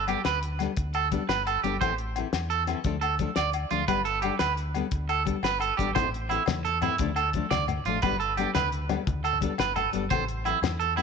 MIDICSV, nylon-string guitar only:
0, 0, Header, 1, 3, 480
1, 0, Start_track
1, 0, Tempo, 346021
1, 2505, Time_signature, 12, 3, 24, 8
1, 15290, End_track
2, 0, Start_track
2, 0, Title_t, "Nylon-string guitar"
2, 0, Program_c, 0, 24
2, 104, Note_on_c, 0, 55, 57
2, 112, Note_on_c, 0, 59, 60
2, 131, Note_on_c, 0, 69, 65
2, 250, Note_off_c, 0, 55, 0
2, 253, Note_off_c, 0, 59, 0
2, 263, Note_off_c, 0, 69, 0
2, 827, Note_on_c, 0, 55, 61
2, 838, Note_on_c, 0, 59, 65
2, 850, Note_on_c, 0, 62, 70
2, 855, Note_on_c, 0, 69, 68
2, 971, Note_off_c, 0, 55, 0
2, 976, Note_off_c, 0, 59, 0
2, 982, Note_off_c, 0, 62, 0
2, 985, Note_off_c, 0, 69, 0
2, 1545, Note_on_c, 0, 55, 61
2, 1555, Note_on_c, 0, 59, 64
2, 1563, Note_on_c, 0, 62, 74
2, 1572, Note_on_c, 0, 69, 74
2, 1690, Note_off_c, 0, 55, 0
2, 1694, Note_off_c, 0, 59, 0
2, 1699, Note_off_c, 0, 62, 0
2, 1703, Note_off_c, 0, 69, 0
2, 2265, Note_on_c, 0, 55, 63
2, 2281, Note_on_c, 0, 59, 53
2, 2283, Note_on_c, 0, 62, 68
2, 2299, Note_on_c, 0, 69, 59
2, 2409, Note_off_c, 0, 55, 0
2, 2417, Note_off_c, 0, 59, 0
2, 2418, Note_off_c, 0, 62, 0
2, 2426, Note_off_c, 0, 69, 0
2, 2510, Note_on_c, 0, 52, 67
2, 2520, Note_on_c, 0, 60, 83
2, 2525, Note_on_c, 0, 64, 77
2, 2527, Note_on_c, 0, 69, 81
2, 2651, Note_off_c, 0, 52, 0
2, 2656, Note_off_c, 0, 60, 0
2, 2659, Note_off_c, 0, 64, 0
2, 2660, Note_off_c, 0, 69, 0
2, 2992, Note_on_c, 0, 52, 55
2, 3008, Note_on_c, 0, 60, 53
2, 3022, Note_on_c, 0, 64, 65
2, 3024, Note_on_c, 0, 69, 66
2, 3132, Note_off_c, 0, 52, 0
2, 3140, Note_off_c, 0, 60, 0
2, 3147, Note_off_c, 0, 64, 0
2, 3148, Note_off_c, 0, 69, 0
2, 3704, Note_on_c, 0, 52, 63
2, 3714, Note_on_c, 0, 60, 65
2, 3723, Note_on_c, 0, 64, 64
2, 3732, Note_on_c, 0, 69, 71
2, 3848, Note_off_c, 0, 52, 0
2, 3853, Note_off_c, 0, 60, 0
2, 3857, Note_off_c, 0, 64, 0
2, 3862, Note_off_c, 0, 69, 0
2, 3951, Note_on_c, 0, 53, 71
2, 3960, Note_on_c, 0, 57, 77
2, 3962, Note_on_c, 0, 62, 73
2, 3967, Note_on_c, 0, 69, 77
2, 4091, Note_off_c, 0, 53, 0
2, 4096, Note_off_c, 0, 57, 0
2, 4097, Note_off_c, 0, 62, 0
2, 4099, Note_off_c, 0, 69, 0
2, 4424, Note_on_c, 0, 53, 62
2, 4442, Note_on_c, 0, 57, 64
2, 4443, Note_on_c, 0, 62, 59
2, 4451, Note_on_c, 0, 69, 72
2, 4567, Note_off_c, 0, 53, 0
2, 4577, Note_off_c, 0, 57, 0
2, 4577, Note_off_c, 0, 62, 0
2, 4581, Note_off_c, 0, 69, 0
2, 5140, Note_on_c, 0, 53, 59
2, 5148, Note_on_c, 0, 57, 66
2, 5157, Note_on_c, 0, 62, 65
2, 5172, Note_on_c, 0, 69, 55
2, 5285, Note_off_c, 0, 53, 0
2, 5289, Note_off_c, 0, 57, 0
2, 5294, Note_off_c, 0, 62, 0
2, 5301, Note_off_c, 0, 69, 0
2, 5377, Note_on_c, 0, 55, 75
2, 5391, Note_on_c, 0, 59, 78
2, 5395, Note_on_c, 0, 62, 72
2, 5396, Note_on_c, 0, 69, 83
2, 5523, Note_off_c, 0, 55, 0
2, 5530, Note_off_c, 0, 59, 0
2, 5533, Note_off_c, 0, 62, 0
2, 5533, Note_off_c, 0, 69, 0
2, 5865, Note_on_c, 0, 55, 49
2, 5888, Note_on_c, 0, 62, 59
2, 5891, Note_on_c, 0, 69, 67
2, 6008, Note_off_c, 0, 55, 0
2, 6019, Note_off_c, 0, 62, 0
2, 6020, Note_off_c, 0, 69, 0
2, 6581, Note_on_c, 0, 55, 52
2, 6593, Note_on_c, 0, 59, 67
2, 6603, Note_on_c, 0, 62, 60
2, 6608, Note_on_c, 0, 69, 71
2, 6725, Note_off_c, 0, 55, 0
2, 6731, Note_off_c, 0, 59, 0
2, 6736, Note_off_c, 0, 62, 0
2, 6739, Note_off_c, 0, 69, 0
2, 7286, Note_on_c, 0, 55, 58
2, 7298, Note_on_c, 0, 59, 69
2, 7310, Note_on_c, 0, 62, 63
2, 7319, Note_on_c, 0, 69, 68
2, 7437, Note_off_c, 0, 55, 0
2, 7443, Note_off_c, 0, 59, 0
2, 7450, Note_off_c, 0, 62, 0
2, 7454, Note_off_c, 0, 69, 0
2, 8018, Note_on_c, 0, 55, 55
2, 8023, Note_on_c, 0, 59, 56
2, 8036, Note_on_c, 0, 62, 59
2, 8045, Note_on_c, 0, 69, 57
2, 8163, Note_off_c, 0, 55, 0
2, 8166, Note_off_c, 0, 59, 0
2, 8173, Note_off_c, 0, 62, 0
2, 8177, Note_off_c, 0, 69, 0
2, 8266, Note_on_c, 0, 60, 66
2, 8276, Note_on_c, 0, 64, 77
2, 8279, Note_on_c, 0, 69, 77
2, 8407, Note_off_c, 0, 60, 0
2, 8412, Note_off_c, 0, 64, 0
2, 8414, Note_off_c, 0, 69, 0
2, 8734, Note_on_c, 0, 52, 51
2, 8751, Note_on_c, 0, 60, 59
2, 8763, Note_on_c, 0, 64, 68
2, 8772, Note_on_c, 0, 69, 60
2, 8881, Note_off_c, 0, 52, 0
2, 8890, Note_off_c, 0, 60, 0
2, 8895, Note_off_c, 0, 64, 0
2, 8900, Note_off_c, 0, 69, 0
2, 9452, Note_on_c, 0, 52, 63
2, 9465, Note_on_c, 0, 60, 70
2, 9477, Note_on_c, 0, 64, 54
2, 9489, Note_on_c, 0, 69, 64
2, 9600, Note_off_c, 0, 52, 0
2, 9607, Note_off_c, 0, 60, 0
2, 9613, Note_off_c, 0, 64, 0
2, 9619, Note_off_c, 0, 69, 0
2, 9707, Note_on_c, 0, 53, 71
2, 9716, Note_on_c, 0, 57, 82
2, 9722, Note_on_c, 0, 62, 86
2, 9726, Note_on_c, 0, 69, 84
2, 9848, Note_off_c, 0, 53, 0
2, 9852, Note_off_c, 0, 57, 0
2, 9855, Note_off_c, 0, 62, 0
2, 9857, Note_off_c, 0, 69, 0
2, 10187, Note_on_c, 0, 53, 56
2, 10200, Note_on_c, 0, 57, 67
2, 10214, Note_on_c, 0, 62, 62
2, 10219, Note_on_c, 0, 69, 63
2, 10328, Note_off_c, 0, 53, 0
2, 10334, Note_off_c, 0, 57, 0
2, 10341, Note_off_c, 0, 62, 0
2, 10344, Note_off_c, 0, 69, 0
2, 10908, Note_on_c, 0, 53, 62
2, 10926, Note_on_c, 0, 57, 70
2, 10931, Note_on_c, 0, 62, 58
2, 10938, Note_on_c, 0, 69, 66
2, 11048, Note_off_c, 0, 53, 0
2, 11057, Note_off_c, 0, 57, 0
2, 11060, Note_off_c, 0, 62, 0
2, 11064, Note_off_c, 0, 69, 0
2, 11151, Note_on_c, 0, 55, 72
2, 11152, Note_on_c, 0, 59, 73
2, 11168, Note_on_c, 0, 69, 89
2, 11169, Note_on_c, 0, 62, 88
2, 11290, Note_off_c, 0, 55, 0
2, 11291, Note_off_c, 0, 59, 0
2, 11299, Note_off_c, 0, 62, 0
2, 11299, Note_off_c, 0, 69, 0
2, 11619, Note_on_c, 0, 55, 60
2, 11637, Note_on_c, 0, 59, 62
2, 11643, Note_on_c, 0, 62, 64
2, 11652, Note_on_c, 0, 69, 71
2, 11765, Note_off_c, 0, 55, 0
2, 11773, Note_off_c, 0, 59, 0
2, 11776, Note_off_c, 0, 62, 0
2, 11781, Note_off_c, 0, 69, 0
2, 12340, Note_on_c, 0, 55, 55
2, 12349, Note_on_c, 0, 59, 70
2, 12356, Note_on_c, 0, 62, 58
2, 12371, Note_on_c, 0, 69, 71
2, 12485, Note_off_c, 0, 55, 0
2, 12490, Note_off_c, 0, 59, 0
2, 12494, Note_off_c, 0, 62, 0
2, 12501, Note_off_c, 0, 69, 0
2, 13049, Note_on_c, 0, 55, 58
2, 13058, Note_on_c, 0, 59, 65
2, 13074, Note_on_c, 0, 62, 71
2, 13085, Note_on_c, 0, 69, 64
2, 13201, Note_off_c, 0, 55, 0
2, 13205, Note_off_c, 0, 59, 0
2, 13213, Note_off_c, 0, 62, 0
2, 13218, Note_off_c, 0, 69, 0
2, 13770, Note_on_c, 0, 55, 57
2, 13783, Note_on_c, 0, 59, 68
2, 13797, Note_on_c, 0, 62, 70
2, 13804, Note_on_c, 0, 69, 62
2, 13922, Note_off_c, 0, 55, 0
2, 13928, Note_off_c, 0, 59, 0
2, 13935, Note_off_c, 0, 62, 0
2, 13939, Note_off_c, 0, 69, 0
2, 14035, Note_on_c, 0, 52, 74
2, 14043, Note_on_c, 0, 60, 80
2, 14049, Note_on_c, 0, 64, 68
2, 14055, Note_on_c, 0, 69, 83
2, 14174, Note_off_c, 0, 52, 0
2, 14179, Note_off_c, 0, 60, 0
2, 14181, Note_off_c, 0, 64, 0
2, 14184, Note_off_c, 0, 69, 0
2, 14500, Note_on_c, 0, 52, 56
2, 14514, Note_on_c, 0, 60, 53
2, 14527, Note_on_c, 0, 64, 60
2, 14534, Note_on_c, 0, 69, 68
2, 14648, Note_off_c, 0, 52, 0
2, 14655, Note_off_c, 0, 60, 0
2, 14661, Note_off_c, 0, 64, 0
2, 14664, Note_off_c, 0, 69, 0
2, 15217, Note_on_c, 0, 52, 63
2, 15228, Note_on_c, 0, 60, 65
2, 15235, Note_on_c, 0, 64, 65
2, 15243, Note_on_c, 0, 69, 62
2, 15290, Note_off_c, 0, 52, 0
2, 15290, Note_off_c, 0, 60, 0
2, 15290, Note_off_c, 0, 64, 0
2, 15290, Note_off_c, 0, 69, 0
2, 15290, End_track
3, 0, Start_track
3, 0, Title_t, "Muted nylon-string guitar strokes"
3, 120, Note_on_c, 9, 29, 63
3, 259, Note_off_c, 9, 29, 0
3, 5871, Note_on_c, 9, 29, 55
3, 6009, Note_off_c, 9, 29, 0
3, 8257, Note_on_c, 9, 29, 67
3, 8395, Note_off_c, 9, 29, 0
3, 15290, End_track
0, 0, End_of_file